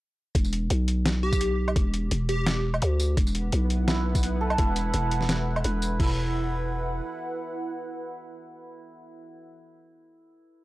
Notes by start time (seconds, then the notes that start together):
0.35 E1, kick, closed hi-hat
0.44 tambourine
0.53 closed hi-hat
0.70 B1, closed hi-hat
0.88 closed hi-hat
1.06 snare, closed hi-hat
1.23 G4
1.33 kick, tambourine
1.41 closed hi-hat
1.68 low woodblock
1.76 E1, kick, closed hi-hat
1.94 closed hi-hat
2.11 E1, closed hi-hat
2.29 G4, closed hi-hat
2.47 snare, closed hi-hat
2.74 low woodblock
2.82 D2, closed hi-hat
3.00 tambourine
3.17 E1 B3 E4 B4 F#5, kick, closed hi-hat
3.27 tambourine
3.35 closed hi-hat
3.52 B1, closed hi-hat
3.70 closed hi-hat
3.88 E4, snare, closed hi-hat
4.15 kick, tambourine
4.23 closed hi-hat
4.41 A4
4.50 low woodblock
4.58 E1 E4, kick, closed hi-hat
4.76 closed hi-hat, tambourine
4.94 E1, closed hi-hat
5.11 closed hi-hat
5.21 snare
5.29 snare, closed hi-hat
5.56 low woodblock
5.64 E1 B4, closed hi-hat
5.82 closed hi-hat, tambourine
6.00 E1 E4 B4 F#5, kick, crash